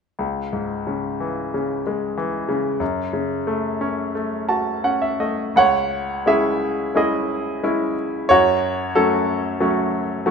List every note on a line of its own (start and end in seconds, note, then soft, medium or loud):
0.19 2.77 C#2 soft
0.53 1.82 G#2 soft
0.87 1.53 C#3 soft
1.20 2.16 E3 soft
1.54 2.47 C#3 soft
1.87 2.78 G#3 soft
2.17 2.79 E3 soft
2.49 2.80 C#3 soft
2.80 5.52 F#2 soft
3.13 4.45 C#3 soft
3.47 4.14 A3 soft
3.81 4.83 C#4 soft
4.15 5.18 A3 soft
4.49 5.53 F#4 soft
4.49 4.82 A5 soft
4.84 5.54 C#4 soft
4.84 5.01 F#5 soft
5.02 5.19 E5 soft
5.20 5.55 A3 soft
5.20 5.53 D#5 soft
5.56 8.26 C#2 soft
5.56 6.24 C#5 medium
5.56 6.29 F#5 medium
6.26 6.93 G#3 soft
6.26 6.94 C#4 soft
6.26 6.94 E4 soft
6.26 6.92 G#4 soft
6.26 6.98 E5 medium
6.95 7.61 G#3 soft
6.95 7.61 C#4 soft
6.95 7.61 E4 soft
6.95 7.93 G#4 soft
6.95 7.93 D#5 medium
7.63 8.28 G#3 soft
7.63 8.28 C#4 soft
7.63 8.29 E4 soft
8.29 10.31 F#2 soft
8.29 8.93 F#4 medium
8.29 8.98 C#5 medium
8.95 9.58 F#3 soft
8.95 9.59 A3 soft
8.95 9.59 C#4 soft
8.95 10.21 A4 medium
9.60 10.24 F#3 soft
9.60 10.24 A3 soft
9.60 10.24 C#4 soft
10.26 10.31 F#3 soft
10.26 10.31 A3 soft
10.26 10.31 C#4 soft